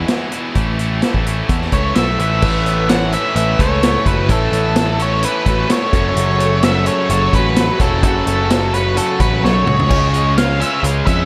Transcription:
Already playing: E4
0.08 E2 B2 E3 G#3 B3 E4, snare, closed hi-hat
0.32 E2 B2 E3 G#3 B3 E4, closed hi-hat
0.55 A1 A2 E3 A3 C#4 E4, kick, closed hi-hat
0.78 A2 E3 A3 C#4 E4, closed hi-hat
1.02 A2 E3 A3 C#4 E4, snare, closed hi-hat
1.14 A1, kick
1.26 A2 E3 A3 C#4 E4, closed hi-hat
1.48 E2 A2 E3 A3 C#4 E4, kick, closed hi-hat
1.61 snare
1.72 C#2 A2 E3 A3 C#4 E4 A4 C#5, kick, closed hi-hat
1.95 B1 A2 E3 A3 C#4 E4 A4 E5, snare, closed hi-hat
2.19 A1 A2 E3 A3 C#4 E4 B4 E5, closed hi-hat
2.42 A1 A2 E3 A3 C#4 E4 A4 B4 C#5, kick, crash
2.65 B3 A4 B4 C#5, closed hi-hat
2.89 E4 A4 B4 C#5 F#5, snare, closed hi-hat
3.11 A2 E3 A3 C#4 A4 B4 C#5 E5, closed hi-hat
3.35 A1 E4 A4 B4 C#5 E5, closed hi-hat
3.59 C#2 A2 E3 A3 C#4 A4 B4 C#5, kick, closed hi-hat
3.82 A2 E3 A3 B3 A4 B4 C#5, snare, closed hi-hat
4.06 F#1 E4 F#4 A4 B4 C#5, kick, closed hi-hat
4.29 A1 A2 E3 A3 E4 A4 B4 C#5, kick, closed hi-hat
4.51 A1 B3 A4 B4 C#5, closed hi-hat
4.75 E4 A4 B4 C#5, snare, closed hi-hat
4.99 A2 E3 A3 C#4 A4 B4 C#5, closed hi-hat
5.22 E4 A4 B4 C#5, closed hi-hat
5.44 A1 A2 E3 A3 C#4 F#4 A4 B4 C#5, kick, closed hi-hat
5.48 B4
5.68 A2 E3 A3 B3 A4 B4 C#5, snare, closed hi-hat
5.92 F#1 F#2 C#3 F#3 C#4 F#4 A4 C#5, kick, closed hi-hat
6.16 F#1 F#2, closed hi-hat
6.38 A3 F#4 A4 C#5, closed hi-hat
6.63 F#2 C#3 F#3 F#4 A4 C#5 E5, snare, closed hi-hat
6.86 C#4 F#4 A4 C#5, closed hi-hat
7.09 F#1 F#2 C#3 F#3 F#4 A4 C#5, closed hi-hat
7.32 A1 F#2 C#3 F#3 C#4 F#4 A4 B4 C#5, kick, closed hi-hat
7.36 F#4
7.55 A3 F#4 A4 C#5, snare, closed hi-hat
7.78 E1 F#2 C#3 F#3 F#4 A4 C#5, kick, snare, closed hi-hat
7.83 E4
8.02 F#1 F#2 F#4 A4 C#5, kick, closed hi-hat
8.07 F#4
8.26 F#1 A3 F#4 A4 C#5, closed hi-hat
8.49 F#2 C#3 F#3 F#4 A4 C#5, snare, closed hi-hat
8.73 C#4 F#4 A4 B4 C#5, closed hi-hat
8.95 F#2 C#3 F#3 F#4 A4 C#5, closed hi-hat
9.19 A1 F#2 C#3 F#3 C#4 F#4 A4 B4 C#5, kick, closed hi-hat
9.43 B1 A3 F#4 A4 C#5, snare
9.65 C#2 F#4 G#4 A4 C#5, mid tom
9.79 floor tom
9.89 C#2 C#3 G#3 C#4 F4 G#4 C#5, kick, crash
10.12 G#3 F4 G#4 C#5, closed hi-hat
10.35 F4 G#4 C#5 F5, snare, closed hi-hat
10.58 C#3 G#3 C#4 F4 G#4 B4 C#5 E5, closed hi-hat
10.83 C#2 F4 G#4 C#5, closed hi-hat
11.05 F2 C#3 G#3 C#4 F4 G#4 B4 C#5 E5, kick, closed hi-hat

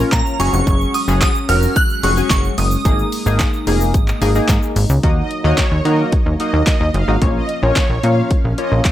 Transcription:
Already playing: F3 A#3 C#4
0.00 C#4 F4 A#4
0.12 A#2 A#5, kick, snare, clap, closed hi-hat, shaker
0.26 shaker
0.40 F#1 F#3 G#3 C#4 F#4 G#4 C#6, open hi-hat, shaker
0.53 F1 C#6, shaker
0.67 F#1, kick, closed hi-hat, shaker
0.81 shaker
0.94 D#6, open hi-hat, shaker
1.08 F#1 C#4 F#4 G#4, shaker
1.21 D#6, kick, snare, clap, closed hi-hat, shaker
1.35 shaker
1.49 F1 C#4 F#4 A#4 F6, open hi-hat, shaker
1.63 shaker
1.76 F#6, kick, closed hi-hat, shaker
1.90 shaker
2.03 F1 C#4 F#4 G#4 C#6, open hi-hat, shaker
2.17 C#4 F#4 G#4, shaker
2.30 F#1 C#6, kick, snare, clap, closed hi-hat, shaker
2.44 shaker
2.58 F#1 D#6, open hi-hat, shaker
2.71 shaker
2.85 G#1 A#3 D#4 G#4, kick, closed hi-hat, shaker
2.99 shaker
3.12 open hi-hat, shaker
3.26 G#1 A#3 D#4 G#4, shaker
3.39 kick, snare, clap, closed hi-hat, shaker
3.53 shaker
3.67 F1 A#3 D#4 G#4, open hi-hat, shaker
3.81 shaker
3.94 G#1, kick, closed hi-hat, shaker
4.08 clap, shaker
4.21 G#1 A#3 D#4 G#4, open hi-hat, shaker
4.35 A#3 D#4 G#4, shaker
4.48 G#2, kick, snare, clap, closed hi-hat, shaker
4.63 shaker
4.76 G#1, open hi-hat, shaker
4.90 C#2, shaker
5.03 D#2 F#3 A#3 D#4 F#4 D#5, kick, closed hi-hat
5.17 D#5
5.31 closed hi-hat
5.44 D#2 A#3 D#4 F#4 C#5 D#5
5.58 kick, snare, clap, closed hi-hat
5.72 D#2
5.85 D#3 A#3 D#4 F#4 A#4 D#5, closed hi-hat
6.12 kick, closed hi-hat
6.26 D#2
6.40 A#3 D#4 F#4 D#5, closed hi-hat
6.54 D#2
6.66 D#5, kick, snare, clap, closed hi-hat
6.81 D#2
6.94 F#1 F5, closed hi-hat
7.08 G#1 A#3 D#4 F#4 D#5
7.21 A#1 F3 A#3 C#4 F4 C#5, kick, closed hi-hat
7.36 D#5
7.49 closed hi-hat
7.62 A#1 A#3 C#4 F4 C#5
7.76 kick, snare, clap, closed hi-hat
7.90 A#1
8.03 A#2 A#3 C#4 F4 C#5 F5, closed hi-hat
8.31 kick, closed hi-hat
8.45 A#1
8.58 A#3 C#4 F4 C#5 D#5, closed hi-hat
8.72 A#1
8.84 F5, kick, snare, clap, closed hi-hat

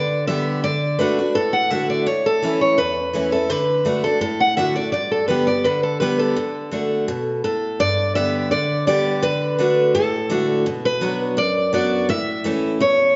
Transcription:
Already playing: D3 D5
0.27 D3 G3 B3 G4 E5
0.64 D3 D5
0.99 D3 A3 D4 F#4 B4
1.19 D4 F#4
1.35 A2 A4
1.53 F#5
1.70 D3 A3 D4 F#4 E5
1.90 D5
2.06 A2 C#5
2.26 A4
2.42 E3 A3 C#4 E4
2.61 C#5
2.78 E2 B4
3.13 E3 A3 C#4 E4
3.32 C#4 E4 A4
3.50 D3 B4
3.85 D3 A3 D4 F#4
4.04 D4 F#4 A4
4.21 A2 A4
4.40 F#5
4.57 D3 A3 D4 F#4 E5
4.76 D4 F#4 D5
4.92 G2 D5
5.11 A4
5.28 D3 G3 B3 G4 B4
5.47 B3 G4 D5
5.64 D3 B4
5.83 A4
6.00 D3 G3 B3 G4 B4
6.19 A4
6.36 D3
6.71 D3 A3 D4 F#4
7.08 B2
7.44 A2 A4
7.80 G2 D5
8.15 D3 G3 B3 G4 E5
8.51 D3 D5
8.87 D3 G3 B3 G4 D5
9.22 D3 B4
9.58 D3 A3 D4 F#4
9.94 A2 A4
10.30 D3 A3 D4 F#4
10.66 B2
10.85 B4
11.01 F#3 B3 D4 F#4
11.37 F#2 D5
11.73 F#3 B3 D4 F#4 D5
12.09 A2 E5
12.44 E3 A3 C#4 E4
12.80 E2 C#5

